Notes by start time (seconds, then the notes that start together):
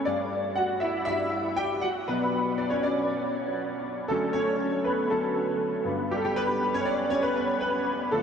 0.05 G2 G3 D4 D5
0.55 F#4 F#5
0.80 E4 E5
1.05 G2 G3 D4 E4 E5
1.56 G4 G5
1.81 F#4 F#5
2.08 B2 F#3 B3 D4 B4
2.58 D4 D5
2.70 C#4 C#5
2.83 D4 D5
4.08 D3 F#3 A3 C#4 A4
4.33 C#4 C#5
4.84 B3 B4
5.10 D3 F#3 A3 C#4 A4
5.84 G2 D3 B3
6.11 G3 G4
6.16 A4
6.25 G3 G4
6.36 B3 B4
6.74 C#4 C#5
6.85 D4 D5
7.10 C#4 C#5
7.23 B3 B4
7.36 B3 B4
7.61 B3 B4
8.11 D3 F3 A3 A4